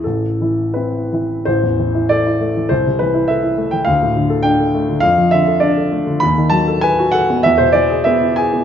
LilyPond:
<<
  \new Staff \with { instrumentName = "Grand piano" } { \time 2/4 \key a \minor \tempo 4 = 100 a'4 b'4 | c''4 d''4 | c''8 b'8 e''8. g''16 | f''4 g''4 |
f''8 e''8 d''8 r8 | b''8 a''8 gis''8 fis''8 | e''16 c''16 d''8 e''8 gis''8 | }
  \new Staff \with { instrumentName = "Grand piano" } { \time 2/4 \key a \minor a,,8 <e e'>8 <c' e'>8 <e e'>8 | a,,16 e,16 e16 e'16 a'16 e'16 a16 e16 | c,16 c16 e16 e'16 a'16 e'16 a16 e16 | d,16 a,16 d16 a'16 d'16 a'16 a16 d16 |
f,16 f16 d16 a'16 d'16 a'16 a16 d16 | dis,16 dis16 fis16 a'16 b'16 fis'16 a'16 b16 | e,16 b,16 e16 gis'16 b16 e'16 gis'16 b16 | }
>>